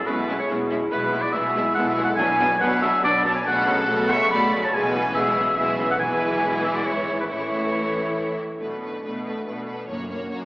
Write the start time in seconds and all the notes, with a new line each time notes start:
Already playing: B2 A3 B3 C#4 E4 C#5 C#6
0.05 B1 B2 G#3 C#4 E4 G#4 B4 E5
0.18 G#5
0.28 G#3 C#4 E4 C#6
0.38 E4 C#5 G#5
0.49 B1 B2 G#3 C#4 E4 E5
0.61 G#4
0.71 G#3 B3 C#4 E4
0.82 E4
0.90 B1 B2 G#3 B3 E4 B4
1.03 B3
1.13 G#3 B3 E4
1.22 F#4 B4 D5
1.33 B1 B2 G#3 B3 E4 G#4 E5
1.44 G#5
1.55 G#3 B3 E4 B5
1.65 G#5
1.74 B1 B2 G#3 B3 E4 A4 E5 F#5
1.87 G#4 E5
1.91 G#4
1.96 G#3 B3 E4
2.04 E4 A4 F#5
2.16 B1 B2 F#3 B3 D4 G#5
2.20 B4
2.28 F#3
2.38 F#3 B3 D4
2.48 B4
2.60 B1 B2 F#3 B3 D4 B4 D5 F#5
2.82 F#3 B3 D4 G#4 E5
3.02 B1 B2 F#3 B3 D4 F#4 D5
3.23 F#3 B3 D4 C#5 A5
3.35 B4 G#5
3.45 B1 B2 C#3 A3 F#4 A4 F#5
3.56 F#3
3.65 C#3 F#3 C#4
3.77 A4
3.87 B1 B2 A3 F#4 C#6
4.09 F#3 C#4 E5 C#6
4.31 B1 B2 A3 F#4 D5 B5
4.51 F#3 C#4
4.62 C#4 C#5 A5
4.73 B1 B2 E3 G#3 E4 B4 G#5
4.84 B3
4.94 E3 B3 C#4
5.05 G#4
5.14 B1 B2 G#3 E4 G#4 C#5 E5
5.26 E5
5.37 E3 B3 C#4
5.47 E5
5.57 B1 B2 G#3 E4 G#4 E5
5.69 E4
5.79 E3 B3 C#4
5.89 C#4 A4 F#5
5.99 B1 B2 E3 G#3 E4 B4 G#5
6.14 G#3
6.35 G#4
6.45 B4
6.63 G#4 E5
6.74 F#4 D5 E5
6.85 G#1 G#2 E4 B4 C#5
6.99 E4
7.09 G#3
7.18 B3 D4 B4
7.29 A1 A2 E3 A3 E4 C#5
7.43 E3
7.54 C#4
7.64 A4
7.75 C#5
7.86 E5
7.96 A5
8.07 E5
8.18 C#5
8.28 E4
8.39 E3
8.50 C#4
8.59 B1 B2 A3 D4 B4
8.81 A3 D4 B4
9.02 B2 A3 B3 D4 B4
9.24 A3 D4 B4
9.46 B2 A3 B3 D4 B4
9.67 A3 D4 B4
9.88 F#1 F#2 A#3 C#4 F#4 C#5
10.10 A#3 C#4 F#4 C#5
10.31 F#2 A#3 F#4 C#5